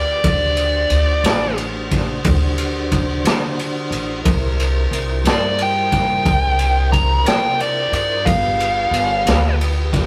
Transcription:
Already playing: upright bass D2, tonewheel organ G4 B4 F5, lead electric guitar D5
0.24 upright bass D2, tonewheel organ D4 F#4 C5, kick, ride
0.28 lead electric guitar D5
0.57 ride
0.90 upright bass D2, ride
1.24 upright bass A1, snare, ride
1.58 ride
1.91 kick, snare, ride
2.24 upright bass D2, kick, ride
2.58 ride
2.92 kick, ride
3.25 upright bass D3, snare, ride
3.59 ride
3.91 upright bass A1, ride
4.24 upright bass C2, tonewheel organ E4 A#4 C5, kick, ride
4.60 ride
4.91 upright bass C2, ride
5.25 upright bass G2, snare, ride
5.30 lead electric guitar D5
5.58 lead electric guitar G5, ride
5.92 lead electric guitar G5, kick, snare, ride
6.25 upright bass C2, kick, ride
6.59 ride
6.92 lead electric guitar A#5, kick, ride
7.25 upright bass C3, lead electric guitar G5, snare, ride
7.60 lead electric guitar D5, ride
7.92 upright bass G2, lead electric guitar D5, ride
8.23 upright bass G1, tonewheel organ F4 G4 B4, lead electric guitar F5, kick, ride
8.60 ride
8.91 upright bass G1, ride
9.26 upright bass D2, snare, ride
9.61 ride
9.93 kick, snare, ride

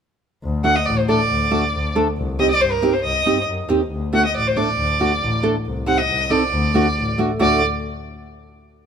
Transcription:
0.44 double bass D2
0.64 nylon-string guitar A3 D4 F#4, violin F#5
0.76 violin D#5
0.86 double bass A1, violin D5
0.98 violin C5
1.08 nylon-string guitar A3 D4 A4, violin D5
1.30 double bass D2
1.51 nylon-string guitar A3 D4 F#4
1.74 double bass D2
1.95 nylon-string guitar A3 D4 A4
2.17 double bass C2
2.39 nylon-string guitar C4 D#4 G4, violin D#5
2.51 violin D5
2.61 double bass G2, violin C5
2.72 violin A#4
2.82 nylon-string guitar C4 D#4 G4
2.93 violin C5
3.04 double bass C2, violin D#5
3.26 double bass G2, nylon-string guitar C4 D#4 G4
3.49 double bass F#2
3.69 double bass D#2, nylon-string guitar C4 D#4 G4
3.91 double bass D2
4.13 nylon-string guitar A3 D4 F#4, violin F#5
4.25 violin D#5
4.35 double bass A1, violin D5
4.47 violin C5
4.56 nylon-string guitar A3 D4 A4, violin D5
4.78 double bass D2
5.00 nylon-string guitar A3 D4 F#4
5.22 double bass A1
5.43 nylon-string guitar A3 D4 A4
5.66 double bass C2
5.86 nylon-string guitar C4 D#4 G4, violin F#5
5.98 violin D#5
6.10 double bass C2
6.30 nylon-string guitar C4 D#4 A4, violin D5
6.53 double bass D2
6.74 nylon-string guitar A3 D4 F#4
6.97 double bass A1
7.18 nylon-string guitar A3 D4 F#4
7.39 double bass D2, nylon-string guitar A3 D4 F#4, violin D5

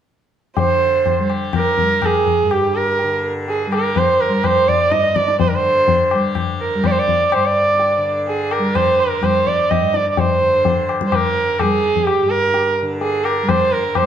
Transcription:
0.57 tanpura D3, sarangi C5, tabla tin, tabla ge
1.06 tabla tin, tabla ge
1.19 tanpura G3
1.30 tabla na
1.53 tabla na, tabla ge
1.57 sarangi A#4
1.78 tanpura G3, tabla ge
2.02 sarangi G#4, tabla na, tabla ge
2.27 tabla ge
2.43 tanpura G2
2.51 sarangi G4, tabla na
2.76 sarangi A#4
2.99 tabla tin
3.04 tanpura D3
3.48 sarangi G#4, tabla tin
3.67 tanpura G3
3.72 sarangi A#4, tabla na
3.96 sarangi C5, tabla na, tabla ge
4.21 sarangi A#4
4.29 tanpura G3
4.44 sarangi C5, tabla na, tabla ge
4.68 sarangi D5, tabla ge
4.90 tanpura G2, sarangi D#5, tabla te
5.04 tabla te
5.16 sarangi D5, tabla ke
5.28 tabla te
5.40 sarangi C5, tabla tin, tabla ge
5.48 tanpura D3, sarangi A#4
5.55 sarangi C5
5.88 tabla tin, tabla ge
6.11 tanpura G3, tabla na
6.35 tabla na, tabla ge
6.61 sarangi A#4
6.75 tanpura G3
6.84 sarangi D5, tabla na, tabla ge
6.91 sarangi C5
6.99 sarangi D5
7.08 tabla ge
7.29 sarangi D5, tabla na
7.34 tanpura G2, sarangi C5
7.45 sarangi D5
7.80 tabla tin
7.98 tanpura D3
8.28 sarangi G#4, tabla tin
8.51 sarangi A#4, tabla na
8.59 tanpura G3
8.75 sarangi C5, tabla na, tabla ge
9.00 sarangi A#4
9.21 tanpura G3, tabla na, tabla ge
9.25 sarangi C5
9.47 sarangi D5, tabla ge
9.70 sarangi D#5, tabla na, tabla ge
9.80 tanpura G2
9.94 sarangi D5, tabla te
10.12 sarangi D5
10.17 sarangi C5, tabla tin, tabla ge
10.41 tanpura D3
10.65 tabla tin, tabla ge
10.89 tabla na
11.01 tanpura G3, tabla ke
11.07 sarangi C5
11.12 sarangi A#4, tabla na, tabla ge
11.59 tanpura G3, sarangi G#4, tabla na, tabla ge
11.84 tabla te
11.96 tabla ge
12.07 sarangi G4, tabla na
12.22 tanpura G2
12.30 sarangi A#4
12.54 tabla tin
12.82 tanpura D3
13.01 sarangi G#4, tabla tin
13.25 sarangi A#4, tabla na
13.43 tanpura G3
13.49 sarangi C5, tabla na, tabla ge
13.72 sarangi A#4
13.95 sarangi C5, tabla na, tabla ge
14.02 tanpura G3

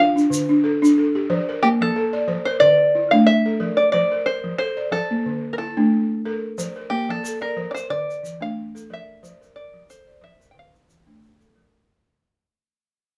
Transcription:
Already playing: balafon D4
0.00 balafon F4, five-string banjo F5
0.16 balafon D4, shaker
0.30 balafon D3, shaker
0.49 balafon D4
0.64 balafon A4
0.82 balafon D4, shaker
0.98 balafon A4
1.15 balafon G4
1.30 balafon F3 C5
1.49 balafon A#4
1.63 balafon A#3, five-string banjo G4
1.81 balafon F3, five-string banjo A4
1.96 balafon A4
2.13 balafon D5
2.28 balafon F3 C5
2.45 balafon A#4, five-string banjo C5
2.60 balafon D3, five-string banjo D5
2.95 balafon E4
3.11 balafon A3 D4, five-string banjo F5
3.27 five-string banjo E5
3.46 balafon A4
3.60 balafon F3 A#4
3.77 five-string banjo D5
3.92 balafon F3 C5, five-string banjo D5
4.12 balafon A#4
4.26 balafon A#4, five-string banjo C5
4.44 balafon F3
4.58 balafon A4, five-string banjo C5
4.77 balafon D5
4.92 balafon F3 C5, five-string banjo A4
5.11 balafon A#3
5.26 balafon D3
5.53 five-string banjo A#4
5.58 balafon E4, five-string banjo A4
5.77 balafon A3 D4
6.25 balafon A4 A#4
6.58 balafon F3 C5, shaker
6.76 balafon A#4
6.90 balafon A#3, five-string banjo G4
7.09 balafon F3, five-string banjo A4
7.23 balafon A4, shaker
7.41 five-string banjo A#4, balafon D5
7.57 balafon F3 C5
7.71 five-string banjo C5 D5
7.76 balafon A#4, shaker
7.90 balafon D3, five-string banjo D5
8.11 shaker
8.23 balafon E3, shaker
8.41 balafon A3 D4, five-string banjo F5
8.75 balafon A4, shaker
8.90 balafon F3 A#4, five-string banjo E5
9.23 balafon F3 C5, shaker
9.41 balafon A#4, shaker
9.56 balafon A#4, five-string banjo D5
9.74 balafon F3
9.89 balafon A4, five-string banjo C5, shaker
10.07 balafon D5
10.21 balafon F3 C5, five-string banjo E5
10.40 balafon A#4, shaker
10.51 balafon D3, five-string banjo G5
10.59 five-string banjo F5
10.75 shaker
10.88 balafon E3, shaker
11.06 balafon A3 D4
11.23 shaker
11.40 balafon A4, shaker
11.56 balafon F3 A#4

